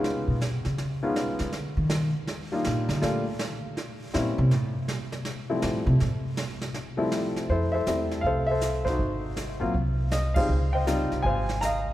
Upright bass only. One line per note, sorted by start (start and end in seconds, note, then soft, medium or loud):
0.28 0.62 B2 medium
0.66 1.00 C#3 medium
1.40 1.74 D3 medium
1.77 2.11 D#3 medium
2.66 2.88 A#2 medium
2.89 3.01 D3 loud
3.03 3.25 A#2 medium
4.15 4.37 A#2 medium
4.38 4.52 C3 loud
4.52 4.75 A2 medium
5.63 5.86 A2 medium
5.87 6.00 C3 loud
6.01 6.15 A2 medium
7.49 7.84 F2 medium
7.86 8.22 E2 medium
8.24 8.96 C2 medium
8.99 9.57 G#1 medium
9.61 9.73 A1 medium
9.74 10.46 C2 medium
10.49 11.07 C#2 medium
11.11 11.24 C2 medium
11.25 11.93 G#1 medium